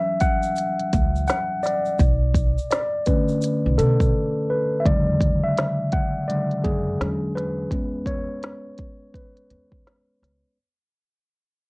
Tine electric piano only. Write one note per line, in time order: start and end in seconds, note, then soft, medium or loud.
0.00 1.60 E3 medium
0.00 1.60 F#3 medium
0.00 1.60 C#4 medium
0.00 2.01 E5 medium
0.21 1.26 F#5 loud
1.28 1.61 F#5 medium
1.63 2.69 D5 loud
2.71 3.08 D5 medium
3.06 4.10 D3 medium
3.06 4.10 A3 medium
3.06 4.11 C#4 medium
3.06 4.45 B4 medium
3.78 4.52 A4 medium
4.50 4.81 B4 medium
4.80 4.85 E5 medium
4.86 5.90 C#3 medium
4.86 5.89 D3 medium
4.86 5.89 F#3 soft
4.86 5.89 G#3 soft
4.86 5.45 D5 medium
5.44 5.94 E5 medium
5.93 6.29 F#5 loud
6.28 6.61 C#3 medium
6.28 6.61 D3 soft
6.28 6.61 F#3 soft
6.28 6.61 G#3 soft
6.28 6.65 D5 medium
6.64 7.38 G#4 medium
7.00 7.68 D3 soft
7.00 7.68 F#3 soft
7.00 7.68 G#3 soft
7.00 7.68 C#4 medium
7.36 8.09 B4 medium
7.72 10.53 G#3 medium
7.72 10.53 B3 medium
7.72 10.54 C#4 medium
8.07 9.17 C#5 medium
9.14 10.17 B4 medium